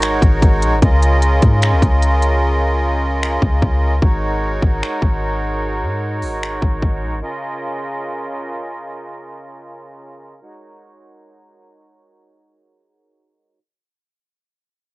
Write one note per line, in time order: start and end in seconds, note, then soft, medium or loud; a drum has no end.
0.00 0.20 G#1 loud
0.00 0.79 G#3 medium
0.00 0.79 D#4 medium
0.00 0.79 F#4 medium
0.00 0.79 A#4 medium
0.00 0.79 C#5 medium
0.00 finger snap loud
0.00 closed hi-hat medium
0.22 0.41 G#1 loud
0.22 kick medium
0.22 closed hi-hat medium
0.42 0.64 G#1 loud
0.42 kick medium
0.42 closed hi-hat medium
0.62 0.74 A#1 medium
0.62 closed hi-hat medium
0.72 0.82 G#1 medium
0.82 1.40 C#2 loud
0.82 3.99 C#3 medium
0.82 3.99 C#4 medium
0.82 3.99 F4 medium
0.82 7.18 A#4 medium
0.82 3.99 D#5 medium
0.82 kick loud
0.82 closed hi-hat medium
1.02 closed hi-hat medium
1.22 closed hi-hat medium
1.42 1.74 G#2 loud
1.42 kick medium
1.42 closed hi-hat medium
1.62 finger snap loud
1.62 closed hi-hat medium
1.72 1.82 C2 medium
1.82 3.38 C#2 loud
1.82 kick medium
1.82 closed hi-hat medium
2.02 closed hi-hat medium
2.22 closed hi-hat medium
3.23 finger snap loud
3.42 3.61 C#2 loud
3.42 kick medium
3.62 4.01 C#2 loud
3.62 kick medium
4.02 4.60 G#1 loud
4.02 7.19 G#3 medium
4.02 7.19 D#4 medium
4.02 7.19 F#4 medium
4.02 7.19 C#5 medium
4.02 kick loud
4.62 4.82 G#1 loud
4.62 kick medium
4.83 finger snap loud
5.02 5.84 G#1 loud
5.02 kick medium
5.82 6.24 G#2 medium
6.22 6.60 G#1 loud
6.22 open hi-hat soft
6.43 finger snap loud
6.62 6.81 G#1 medium
6.62 kick medium
6.82 7.04 G#1 loud
6.82 kick medium
7.02 7.14 A#1 medium
7.12 7.22 G#1 medium
7.22 10.39 C#3 medium
7.22 10.39 C#4 medium
7.22 10.39 F4 medium
7.22 13.58 A#4 medium
7.22 10.39 D#5 medium
10.42 13.59 G#3 medium
10.42 13.59 D#4 medium
10.42 13.59 F#4 medium
10.42 13.59 C#5 medium